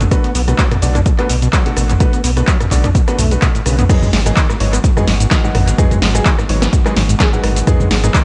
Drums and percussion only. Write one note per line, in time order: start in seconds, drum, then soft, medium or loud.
0.01 closed hi-hat soft
0.01 mid tom medium
0.01 shaker soft
0.11 kick loud
0.11 cross-stick medium
0.11 closed hi-hat medium
0.11 shaker soft
0.24 closed hi-hat soft
0.35 open hi-hat loud
0.35 shaker medium
0.48 cross-stick soft
0.48 closed hi-hat soft
0.48 shaker soft
0.58 kick loud
0.58 clap loud
0.58 closed hi-hat medium
0.58 shaker soft
0.71 cross-stick medium
0.71 closed hi-hat soft
0.71 mid tom medium
0.82 open hi-hat loud
0.82 shaker medium
0.95 cross-stick soft
0.95 closed hi-hat soft
0.95 mid tom medium
0.95 shaker soft
1.06 kick loud
1.06 closed hi-hat medium
1.06 shaker soft
1.18 cross-stick medium
1.18 clap soft
1.18 closed hi-hat soft
1.29 open hi-hat loud
1.29 shaker medium
1.42 closed hi-hat soft
1.42 shaker soft
1.53 kick loud
1.53 cross-stick soft
1.53 clap loud
1.53 closed hi-hat medium
1.53 shaker soft
1.66 closed hi-hat soft
1.77 cross-stick medium
1.77 open hi-hat loud
1.77 shaker medium
1.90 closed hi-hat soft
1.90 mid tom medium
1.90 shaker soft
2.00 kick loud
2.00 cross-stick medium
2.00 closed hi-hat medium
2.00 shaker soft
2.13 closed hi-hat soft
2.13 shaker soft
2.24 open hi-hat loud
2.24 shaker medium
2.37 cross-stick soft
2.37 closed hi-hat soft
2.37 shaker soft
2.47 kick loud
2.47 clap loud
2.47 closed hi-hat medium
2.47 shaker soft
2.60 cross-stick medium
2.60 closed hi-hat soft
2.60 mid tom medium
2.60 shaker soft
2.71 kick medium
2.71 clap soft
2.71 open hi-hat loud
2.71 shaker medium
2.84 cross-stick soft
2.84 closed hi-hat soft
2.84 mid tom loud
2.84 shaker soft
2.95 kick loud
2.95 closed hi-hat medium
2.95 shaker soft
3.08 cross-stick medium
3.08 closed hi-hat soft
3.08 shaker soft
3.19 mid tom medium
3.19 open hi-hat loud
3.19 shaker medium
3.31 closed hi-hat soft
3.31 shaker soft
3.42 kick loud
3.42 cross-stick soft
3.42 clap loud
3.42 closed hi-hat medium
3.42 shaker soft
3.55 closed hi-hat soft
3.55 shaker soft
3.66 cross-stick medium
3.66 open hi-hat loud
3.66 shaker medium
3.79 closed hi-hat soft
3.79 mid tom loud
3.79 shaker soft
3.89 kick loud
3.89 cross-stick medium
3.89 closed hi-hat medium
3.89 mid tom loud
3.89 crash loud
3.89 shaker medium
4.02 mid tom loud
4.02 shaker soft
4.13 snare medium
4.13 open hi-hat loud
4.26 cross-stick soft
4.26 closed hi-hat medium
4.26 shaker medium
4.36 kick loud
4.36 clap loud
4.36 closed hi-hat medium
4.36 shaker medium
4.50 cross-stick medium
4.50 shaker soft
4.60 open hi-hat loud
4.73 cross-stick soft
4.73 closed hi-hat medium
4.73 shaker medium
4.84 kick loud
4.84 closed hi-hat medium
4.84 shaker medium
4.97 cross-stick medium
4.97 mid tom medium
4.97 shaker soft
5.08 snare medium
5.08 open hi-hat loud
5.20 closed hi-hat medium
5.20 shaker medium
5.31 kick loud
5.31 cross-stick soft
5.31 snare medium
5.31 clap loud
5.31 closed hi-hat medium
5.31 shaker medium
5.45 shaker soft
5.55 cross-stick medium
5.55 mid tom loud
5.55 open hi-hat loud
5.68 closed hi-hat medium
5.68 shaker medium
5.78 kick loud
5.78 cross-stick medium
5.78 closed hi-hat medium
5.78 mid tom loud
5.78 shaker medium
5.91 closed hi-hat soft
5.91 mid tom medium
5.91 shaker soft
6.02 snare medium
6.02 open hi-hat loud
6.15 cross-stick soft
6.15 closed hi-hat medium
6.15 shaker medium
6.25 kick loud
6.25 clap loud
6.25 closed hi-hat medium
6.25 shaker medium
6.38 cross-stick medium
6.38 shaker soft
6.49 open hi-hat loud
6.62 cross-stick soft
6.62 snare medium
6.62 closed hi-hat medium
6.62 shaker medium
6.73 kick loud
6.73 closed hi-hat medium
6.73 shaker medium
6.85 cross-stick medium
6.85 clap soft
6.85 shaker soft
6.96 snare medium
6.96 open hi-hat loud
7.09 closed hi-hat medium
7.09 shaker medium
7.19 kick loud
7.19 cross-stick soft
7.19 snare medium
7.19 clap loud
7.19 closed hi-hat medium
7.19 shaker medium
7.33 shaker soft
7.44 cross-stick medium
7.44 open hi-hat loud
7.56 closed hi-hat medium
7.56 shaker medium
7.67 kick loud
7.67 cross-stick medium
7.67 closed hi-hat medium
7.67 mid tom loud
7.67 shaker medium
7.80 mid tom loud
7.80 shaker soft
7.91 snare medium
7.91 open hi-hat loud
8.04 cross-stick soft
8.04 closed hi-hat medium
8.04 shaker medium
8.14 kick loud
8.14 clap loud
8.14 closed hi-hat medium
8.14 shaker medium